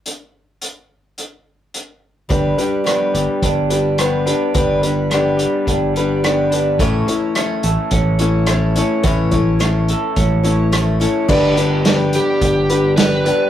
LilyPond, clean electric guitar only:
\new Staff \with { instrumentName = "Clean electric guitar" } { \time 4/4 \key g \lydian \tempo 4 = 107 r1 | g,8 g8 b8 g'8 d'8 g8 b8 d'8 | g,8 g8 b8 g'8 d'8 g8 b8 d'8 | a,8 e8 a8 a'8 cis'8 e8 a8 cis'8 |
a,8 e8 a8 a'8 cis'8 e8 a8 cis'8 | <g, d g b d' g'>2.~ <g, d g b d' g'>8 <g, d g b d' g'>8 | }